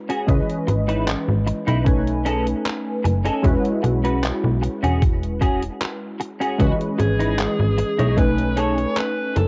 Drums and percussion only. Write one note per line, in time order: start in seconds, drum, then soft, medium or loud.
0.10 closed hi-hat medium
0.28 kick loud
0.28 closed hi-hat medium
0.50 closed hi-hat soft
0.68 closed hi-hat medium
0.89 closed hi-hat medium
1.08 clap loud
1.08 closed hi-hat medium
1.47 closed hi-hat medium
1.68 closed hi-hat medium
1.86 kick loud
1.86 closed hi-hat medium
2.07 closed hi-hat soft
2.26 closed hi-hat medium
2.47 closed hi-hat soft
2.66 clap loud
2.66 closed hi-hat medium
3.05 closed hi-hat medium
3.26 closed hi-hat medium
3.44 kick loud
3.44 closed hi-hat medium
3.65 closed hi-hat soft
3.84 closed hi-hat medium
4.05 closed hi-hat soft
4.24 clap loud
4.24 closed hi-hat medium
4.63 closed hi-hat medium
4.84 closed hi-hat medium
5.02 kick loud
5.02 closed hi-hat medium
5.23 closed hi-hat soft
5.41 kick medium
5.41 closed hi-hat medium
5.62 closed hi-hat soft
5.81 clap loud
5.81 closed hi-hat medium
6.21 closed hi-hat medium
6.42 closed hi-hat medium
6.60 kick loud
6.60 closed hi-hat medium
6.81 closed hi-hat soft
7.00 closed hi-hat medium
7.20 closed hi-hat soft
7.39 clap loud
7.39 closed hi-hat medium
7.78 closed hi-hat medium
7.99 closed hi-hat medium
8.18 kick loud
8.18 closed hi-hat medium
8.38 closed hi-hat soft
8.57 closed hi-hat medium
8.78 closed hi-hat soft
8.97 clap loud
8.97 closed hi-hat medium
9.36 closed hi-hat medium